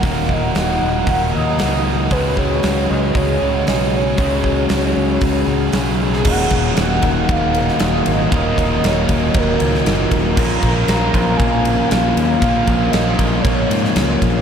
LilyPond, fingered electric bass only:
\new Staff \with { instrumentName = "Fingered electric bass" } { \clef bass \time 4/4 \key ees \minor \tempo 4 = 116 ees,,4 ees,,8 ees,,8 ees,,8 ees,8 des,4 | des,4 des,8 des,8 des,8 des,8 ces,4 | des,4 des,8 des,8 des,8 des,8 ces,4 | ees,,8 ees,,8 ees,,8 ees,,8 ees,,4 ees,,8 aes,,8 |
ees,,8 ees,,8 ees,,8 ees,,8 ees,,8 des,8 ges,,8 ees,,8 | bes,,8 bes,,8 bes,,8 bes,,8 bes,,4 bes,,8 ees,8 | bes,,8 bes,,8 bes,,8 bes,,8 bes,,8 aes,8 des,8 bes,,8 | }